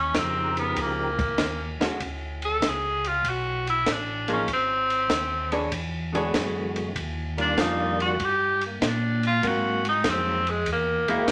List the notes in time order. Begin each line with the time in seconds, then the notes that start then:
Already playing: D#2 C#4
0.14 F2 C#3 F3 D#4 G4 A#4, kick, snare, hi-hat pedal, ride
0.18 C4
0.57 B3, ride
0.76 C#2, kick, ride
0.81 A#3
1.19 kick, ride
1.38 D#2, kick, snare, hi-hat pedal, ride
1.80 D#2 D3 G#3 C#4 F#4, snare, ride
2.00 D2, kick, ride
2.42 A4, ride
2.62 C#2, kick, snare, hi-hat pedal, ride
2.68 G#4
3.04 F4, ride
3.24 B1, kick, ride
3.29 F#4
3.67 E4, ride
3.86 A1, kick, snare, hi-hat pedal, ride
3.92 D4
4.28 F3 A#3 D#4 G#4, ride
4.33 C#4
4.48 G#1, kick, ride
4.53 C4
4.90 ride
5.10 D#2, kick, snare, hi-hat pedal, ride
5.52 E3 D4 G#4 C#5, ride
5.72 E2, kick, ride
6.12 D3 E3 G#3 B3 D4 F#4 G#4, ride
6.16 C#5
6.34 F#2, kick, snare, hi-hat pedal, ride
6.76 ride
6.96 D#2, kick, ride
7.37 D#3 G3 A#3 D4 F4 D5, ride
7.57 F2 D#3 G3 D4 D#4 F4, kick, snare, hi-hat pedal, ride
8.00 F#4, ride
8.19 G2, kick, ride
8.24 G4
8.61 ride
8.66 A#3
8.81 A#2, kick, snare, hi-hat pedal, ride
8.87 D4
9.23 F4, ride
9.43 G#2 F#3 A#3 C4, kick, ride
9.48 F#4
9.85 D#4, ride
10.04 F2 F#3 G#3 A#3 C4 D#4, kick, snare, hi-hat pedal, ride
10.10 C4
10.47 G#3, ride
10.66 E2, kick, ride
10.73 A#3
11.08 E2 G#3 A#3 C4 E4 F#4, ride
11.28 D#2, kick, snare, hi-hat pedal, ride